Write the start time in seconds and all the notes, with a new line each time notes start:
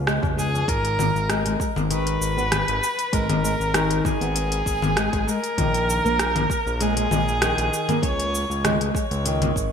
Already playing: C#2 C#3 B3 F4
0.07 G#3, cross-stick, shaker
0.23 C#2 G#3, kick, tabla na, tabla tin, tabla ge, shaker
0.37 G#3 G#4, shaker
0.53 tabla na, tabla tin, tabla ge, shaker
0.68 G#1 A#4, kick, closed hi-hat, shaker
0.85 closed hi-hat, shaker
0.99 low conga, shaker
1.15 G#1, shaker
1.29 G#3, cross-stick, closed hi-hat, shaker
1.45 G#3, closed hi-hat, shaker
1.60 G#3, kick, shaker
1.76 G#1, low conga, shaker
1.90 D#3 B4, closed hi-hat, shaker
2.07 closed hi-hat, shaker
2.21 G#1, shaker
2.37 B3, shaker
2.52 cross-stick, closed hi-hat, low conga, shaker
2.68 G#1, closed hi-hat, shaker
2.83 shaker
2.99 closed hi-hat, shaker
3.12 G#1 G#3 A#4, kick, closed hi-hat, shaker
3.29 G#3, closed hi-hat, low conga, shaker
3.43 G#3, shaker
3.60 G#1, shaker
3.74 D#3, cross-stick, closed hi-hat, shaker
3.91 closed hi-hat, shaker
4.05 G#4, kick, low conga, shaker
4.20 G#1 B3, closed hi-hat, shaker
4.36 closed hi-hat, shaker
4.52 closed hi-hat, shaker
4.66 G#1, kick, shaker
4.82 low conga, shaker
4.96 G#3, cross-stick, closed hi-hat, shaker
5.13 G#1 G#3, kick, closed hi-hat, shaker
5.27 G#3 A#4, shaker
5.44 closed hi-hat, shaker
5.58 A#1 D#3, kick, closed hi-hat, low conga, shaker
5.74 closed hi-hat, shaker
5.90 shaker
6.05 A#1 A#3, shaker
6.19 cross-stick, closed hi-hat, shaker
6.36 closed hi-hat, low conga, shaker
6.50 kick, shaker
6.66 A#1, shaker
6.80 G#3 G#4, closed hi-hat, shaker
6.97 G#3, closed hi-hat, shaker
7.11 A#1 G#3, low conga, shaker
7.28 shaker
7.42 D#3, cross-stick, closed hi-hat, shaker
7.58 A#1, closed hi-hat, shaker
7.73 shaker
7.89 A#3, closed hi-hat, low conga, shaker
8.03 C#2 C#5, kick, closed hi-hat, shaker
8.20 closed hi-hat, shaker
8.35 shaker
8.50 C#2, shaker
8.64 G#3, cross-stick, closed hi-hat, low conga, shaker
8.80 G#3, closed hi-hat, shaker
8.94 G#3, kick, shaker
9.11 C#2, closed hi-hat, shaker
9.25 D#3, closed hi-hat, shaker
9.42 closed hi-hat, low conga, shaker
9.56 G#1, kick, shaker